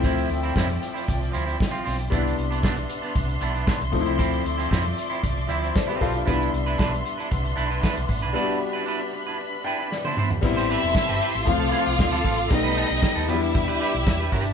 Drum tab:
CC |----------------|----------------|----------------|----------------|
HH |xxxx-xxxxxxx-xox|xxxx-xxxxxxx-xox|xxxx-xxxxxxx-xox|xxxx-xxxxxxx-xox|
SD |----o-------o-o-|----o-------o---|----o-------o-o-|----o-------o---|
T1 |----------------|----------------|----------------|----------------|
T2 |----------------|----------------|----------------|----------------|
FT |----------------|----------------|----------------|----------------|
BD |o---o---o---o---|o---o---o---o-o-|o---o---o---o-o-|o---o---o---o-o-|

CC |----------------|x---------------|----------------|
HH |----------------|-xxx-xxxxxxx-xox|xxxx-xxxxxxx-xox|
SD |------------o---|----o-------o-o-|----o-------o---|
T1 |-------------o--|----------------|----------------|
T2 |--------------o-|----------------|----------------|
FT |---------------o|----------------|----------------|
BD |----------------|o---o---o---o-o-|o---o---o---o-o-|